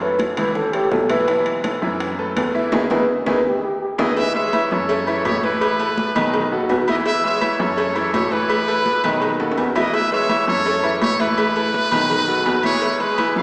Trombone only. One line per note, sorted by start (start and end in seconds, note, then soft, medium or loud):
0.02 0.19 B4 loud
0.39 0.55 B4 medium
0.56 0.76 A4 medium
0.74 0.92 G4 loud
0.92 1.12 A4 loud
1.10 1.45 B4 loud
2.92 3.09 B4 loud
3.28 3.45 B4 loud
3.47 3.63 G4 medium
3.64 3.81 G4 medium
3.82 3.99 G4 medium
4.00 4.17 B4 medium